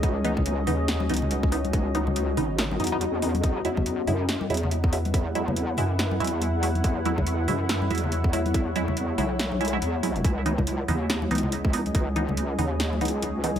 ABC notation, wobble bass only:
X:1
M:4/4
L:1/8
Q:"Swing 16ths" 1/4=141
K:C#m
V:1 name="Wobble bass" clef=bass
C,,3 D,,2 C,,3 | C,,3 G,,,2 E,,3 | E,,3 F,,2 E,,3 | E,,3 F,,2 E,,3 |
E,,3 F,,2 E,,3 | E,,3 B,,,3 E,,2 | C,,3 D,,2 C,,3 | C,,3 D,,2 C,,3 |]